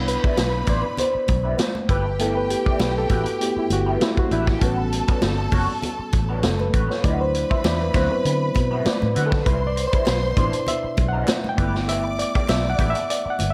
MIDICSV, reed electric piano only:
0, 0, Header, 1, 2, 480
1, 0, Start_track
1, 0, Key_signature, 1, "major"
1, 0, Tempo, 605449
1, 1740, Time_signature, 4, 2, 24, 8
1, 10731, End_track
2, 0, Start_track
2, 0, Title_t, "Reed electric piano"
2, 0, Program_c, 0, 4
2, 0, Control_c, 0, 64, 127
2, 0, Note_on_c, 0, 59, 50
2, 0, Note_on_c, 0, 62, 46
2, 0, Note_on_c, 0, 64, 57
2, 65, Note_on_c, 0, 71, 94
2, 143, Note_off_c, 0, 59, 0
2, 145, Note_off_c, 0, 62, 0
2, 148, Note_off_c, 0, 64, 0
2, 549, Note_on_c, 0, 74, 86
2, 557, Note_off_c, 0, 71, 0
2, 789, Note_on_c, 0, 72, 91
2, 792, Note_off_c, 0, 74, 0
2, 1510, Control_c, 0, 64, 0
2, 1511, Note_on_c, 0, 71, 86
2, 1526, Note_off_c, 0, 72, 0
2, 1624, Control_c, 0, 64, 127
2, 1729, Note_off_c, 0, 71, 0
2, 1737, Note_on_c, 0, 57, 52
2, 1742, Note_on_c, 0, 59, 47
2, 1748, Note_on_c, 0, 64, 56
2, 1754, Note_on_c, 0, 69, 87
2, 1880, Note_off_c, 0, 69, 0
2, 1881, Note_on_c, 0, 71, 87
2, 1987, Note_on_c, 0, 67, 82
2, 1989, Note_off_c, 0, 71, 0
2, 2065, Note_off_c, 0, 57, 0
2, 2067, Note_off_c, 0, 59, 0
2, 2071, Note_off_c, 0, 64, 0
2, 2231, Note_off_c, 0, 67, 0
2, 2231, Note_on_c, 0, 71, 77
2, 2359, Note_off_c, 0, 71, 0
2, 2363, Note_on_c, 0, 69, 81
2, 2470, Note_off_c, 0, 69, 0
2, 2473, Note_on_c, 0, 66, 84
2, 2700, Note_on_c, 0, 57, 46
2, 2704, Note_on_c, 0, 59, 44
2, 2706, Note_on_c, 0, 64, 50
2, 2714, Note_off_c, 0, 66, 0
2, 2715, Note_on_c, 0, 67, 85
2, 2834, Note_off_c, 0, 64, 0
2, 2841, Note_off_c, 0, 67, 0
2, 2844, Note_on_c, 0, 64, 72
2, 2890, Note_off_c, 0, 64, 0
2, 2916, Note_off_c, 0, 57, 0
2, 2918, Note_off_c, 0, 59, 0
2, 2954, Note_on_c, 0, 66, 79
2, 3189, Note_on_c, 0, 64, 78
2, 3194, Note_off_c, 0, 66, 0
2, 3318, Note_off_c, 0, 64, 0
2, 3322, Note_on_c, 0, 66, 79
2, 3429, Note_off_c, 0, 66, 0
2, 3431, Note_on_c, 0, 64, 80
2, 3659, Note_on_c, 0, 55, 52
2, 3661, Note_on_c, 0, 59, 50
2, 3665, Note_on_c, 0, 61, 50
2, 3668, Note_on_c, 0, 66, 71
2, 3672, Control_c, 0, 64, 0
2, 3673, Note_off_c, 0, 64, 0
2, 3833, Control_c, 0, 64, 127
2, 3986, Note_off_c, 0, 55, 0
2, 3987, Note_off_c, 0, 59, 0
2, 3990, Note_off_c, 0, 61, 0
2, 4835, Note_off_c, 0, 66, 0
2, 5104, Note_on_c, 0, 69, 71
2, 5235, Note_off_c, 0, 69, 0
2, 5235, Note_on_c, 0, 71, 73
2, 5476, Note_on_c, 0, 73, 70
2, 5480, Note_off_c, 0, 71, 0
2, 5580, Note_on_c, 0, 54, 50
2, 5584, Note_on_c, 0, 74, 86
2, 5585, Note_on_c, 0, 57, 50
2, 5587, Note_off_c, 0, 73, 0
2, 5587, Note_on_c, 0, 62, 50
2, 5589, Control_c, 0, 64, 0
2, 5590, Note_on_c, 0, 64, 60
2, 5715, Note_on_c, 0, 72, 76
2, 5716, Note_off_c, 0, 74, 0
2, 5720, Control_c, 0, 64, 127
2, 5953, Note_on_c, 0, 76, 81
2, 5959, Note_off_c, 0, 72, 0
2, 6065, Note_off_c, 0, 76, 0
2, 6065, Note_on_c, 0, 74, 77
2, 6286, Note_off_c, 0, 74, 0
2, 6294, Note_off_c, 0, 54, 0
2, 6299, Note_off_c, 0, 64, 0
2, 6303, Note_on_c, 0, 54, 46
2, 6305, Note_on_c, 0, 59, 40
2, 6307, Note_on_c, 0, 60, 42
2, 6307, Note_on_c, 0, 72, 80
2, 6308, Note_on_c, 0, 64, 50
2, 6424, Note_off_c, 0, 72, 0
2, 6434, Note_on_c, 0, 71, 84
2, 6518, Note_off_c, 0, 54, 0
2, 6519, Note_off_c, 0, 59, 0
2, 6520, Note_off_c, 0, 60, 0
2, 6521, Note_off_c, 0, 64, 0
2, 6880, Note_off_c, 0, 71, 0
2, 7023, Note_on_c, 0, 74, 81
2, 7185, Note_on_c, 0, 71, 81
2, 7187, Note_off_c, 0, 74, 0
2, 7343, Note_on_c, 0, 69, 81
2, 7347, Note_off_c, 0, 71, 0
2, 7415, Note_off_c, 0, 69, 0
2, 7471, Note_off_c, 0, 57, 0
2, 7472, Note_off_c, 0, 62, 0
2, 7504, Note_on_c, 0, 71, 92
2, 7510, Control_c, 0, 64, 0
2, 7667, Note_off_c, 0, 71, 0
2, 7667, Note_on_c, 0, 74, 88
2, 7673, Control_c, 0, 64, 127
2, 7737, Note_off_c, 0, 74, 0
2, 7832, Note_on_c, 0, 72, 83
2, 7975, Note_off_c, 0, 72, 0
2, 7989, Note_on_c, 0, 71, 76
2, 8095, Note_off_c, 0, 71, 0
2, 8223, Note_on_c, 0, 47, 54
2, 8229, Note_on_c, 0, 62, 51
2, 8231, Note_on_c, 0, 64, 59
2, 8231, Note_on_c, 0, 74, 81
2, 8469, Note_on_c, 0, 76, 99
2, 8472, Note_off_c, 0, 74, 0
2, 8548, Note_off_c, 0, 47, 0
2, 8551, Note_off_c, 0, 62, 0
2, 8552, Note_off_c, 0, 64, 0
2, 8788, Note_on_c, 0, 78, 95
2, 8794, Note_off_c, 0, 76, 0
2, 9109, Note_on_c, 0, 79, 99
2, 9113, Note_off_c, 0, 78, 0
2, 9178, Note_on_c, 0, 57, 58
2, 9183, Note_on_c, 0, 59, 50
2, 9188, Note_on_c, 0, 64, 57
2, 9189, Control_c, 0, 64, 0
2, 9342, Control_c, 0, 64, 127
2, 9402, Note_off_c, 0, 79, 0
2, 9424, Note_on_c, 0, 76, 95
2, 9664, Note_on_c, 0, 74, 94
2, 9669, Note_off_c, 0, 76, 0
2, 9904, Note_on_c, 0, 76, 96
2, 9909, Note_off_c, 0, 74, 0
2, 10065, Note_on_c, 0, 78, 93
2, 10067, Note_off_c, 0, 76, 0
2, 10227, Note_off_c, 0, 78, 0
2, 10227, Note_on_c, 0, 76, 91
2, 10387, Note_on_c, 0, 74, 91
2, 10388, Note_off_c, 0, 76, 0
2, 10546, Note_on_c, 0, 78, 91
2, 10548, Note_off_c, 0, 74, 0
2, 10707, Note_off_c, 0, 78, 0
2, 10707, Note_on_c, 0, 76, 87
2, 10731, Note_off_c, 0, 57, 0
2, 10731, Note_off_c, 0, 59, 0
2, 10731, Note_off_c, 0, 64, 0
2, 10731, Note_off_c, 0, 76, 0
2, 10731, End_track
0, 0, End_of_file